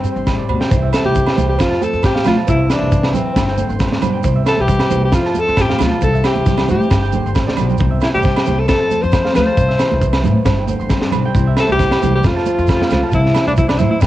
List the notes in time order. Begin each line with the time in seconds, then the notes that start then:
Already playing: G2 C4 E5 G5 A5
0.04 G4 C5, shekere
0.16 G1 C6, shekere
0.27 A2, kick, snare, low agogo, shekere
0.38 D5
0.49 D2 B2 C5, low agogo
0.60 G5, snare
0.70 C2 C3 E3 G3 C4 E4 C5, kick, shekere
0.82 E5
0.93 E3 A4 C5, snare, low agogo, shekere
1.05 C2 G4, high conga
1.15 D3 C5, kick, shekere
1.26 snare, low agogo
1.36 C2 E3 C5, high conga, low conga, shekere
1.49 G4
1.58 F2 F4 C5, kick, snare, low agogo, shekere
1.70 A5, snare
1.81 F3 A4 C5, high conga, shekere
1.93 F2, shekere
2.03 A2 G4, kick, snare, low agogo, shekere
2.14 F5, snare, high conga
2.24 D2 B2 F4 C5, snare, low conga, low agogo, shekere
2.36 A5
2.47 C2 C3 E3 G3 C4 E4 C5, kick, shekere
2.58 E5
2.70 E3 D4 C5, snare, low agogo, shekere
2.81 C2, high conga
2.92 C5, kick, shekere
3.03 snare, low agogo
3.13 A1 C4 C5, high conga, low conga, shekere
3.35 G1 G2 C5, kick, snare, low agogo, shekere
3.48 G5, snare
3.57 D3 C5, high conga, shekere
3.69 G1 C6, shekere
3.79 A2, kick, snare, low agogo, shekere
3.92 D5, snare, high conga
4.01 G2 B2 C5, low conga, low agogo, shekere
4.14 G5
4.23 C2 C3 C5, kick, shekere
4.36 E5
4.45 E3 A4 C5, snare, low agogo, shekere
4.57 C2 G4, high conga
4.68 G3 C5, kick, shekere
4.79 snare, low agogo
4.90 C2 C4 C5, high conga, low conga, shekere
5.05 G4
5.12 F2 F4 C5, kick, snare, low agogo, shekere
5.25 A5, snare
5.35 F3 C5, high conga, shekere
5.39 A4
5.47 F2 C6, shekere
5.57 A2, kick, snare, low agogo, shekere
5.61 G4
5.68 F5, snare, high conga
5.79 D2 B2 C5, snare, low conga, low agogo, shekere
5.83 F4
5.91 A5
6.01 C2 C3 E3 G3 C4 E4 A4 C5, kick, shekere
6.13 E5, shekere
6.24 E3 G4 C5, snare, low agogo, shekere
6.35 C2, high conga, shekere
6.46 G3 C5, kick, snare, low conga, shekere
6.58 snare, low agogo, shekere
6.68 A2 C4 G4 C5, high conga, low conga, shekere
6.82 shekere
6.90 G1 G2 C5, kick, snare, low agogo, shekere
7.02 G5, shekere
7.12 D3 C5, high conga, low conga, shekere
7.26 G1 C6, high conga, shekere
7.35 A2, kick, snare, high conga, low agogo, shekere
7.47 D5, snare, high conga
7.57 B1 B2 C5, low conga, low agogo, shekere
7.69 G5, low conga, shekere
7.78 C2 C3 C5, kick, shekere
7.91 E5
8.01 E4 C5, muted steel-string acoustic guitar stroke, snare, low agogo, shekere
8.14 C2 G4, high conga
8.23 G3 C5, kick, snare, shekere
8.36 snare, low agogo
8.46 C2 C4 C5, high conga, low conga, shekere
8.59 A4
8.68 F2 A4 C5, kick, snare, low agogo, shekere
8.80 A5
8.91 F3 C5, high conga, shekere
9.02 F2 C5 C6, shekere
9.12 A3, kick, snare, low agogo, shekere
9.24 F5, snare, high conga
9.34 D2 C4 C5 F5, snare, low conga, low agogo, shekere
9.46 A5
9.56 C2 C3 C5, kick, shekere
9.68 E5, snare
9.79 E3 C5, snare, low agogo, shekere
9.92 C2, high conga
10.00 C5, muted steel-string acoustic guitar stroke, kick, shekere
10.13 snare, low agogo
10.23 A2 C5, high conga, low conga, shekere
10.45 G1 G2 C5, kick, snare, low agogo, shekere
10.58 G5
10.67 D3 C5, high conga, shekere
10.79 G1 C6, shekere
10.90 G3, kick, snare, low agogo, shekere
11.02 D5, snare
11.12 B1 C4 C5, low conga, low agogo, shekere
11.25 G5
11.35 C2 C3 G3 C4 E4 C5, muted steel-string acoustic guitar stroke, kick, shekere
11.47 E5
11.57 E3 A4 C5, snare, low agogo, shekere
11.69 C2 G4, high conga
11.79 D3 C5, kick, snare, shekere
11.91 snare, low agogo
12.02 C2 E3 C5, high conga, low conga, shekere
12.15 G4
12.23 F2 F3 F4 C5, kick, snare, low agogo, shekere
12.27 A3, muted steel-string acoustic guitar stroke
12.36 A5, snare
12.46 F3 C5, high conga, shekere
12.59 F2 C6, shekere
12.67 A3, kick, snare, low agogo, shekere
12.80 F5, snare, high conga
12.90 C#2 C4 C5, snare, low conga, low agogo, shekere
13.03 A5
13.12 C2 C3 E4 C5, kick, shekere
13.25 E5, snare
13.34 E3 C5, snare, low agogo, shekere
13.47 C2 D4, high conga, shekere
13.57 B2 E4 C5, kick, low conga, shekere
13.68 D4, snare, low agogo, shekere
13.78 A2 E4 C5, high conga, low conga, shekere
13.90 E4
14.01 G1 G2 C4 C5, kick, snare, low agogo, shekere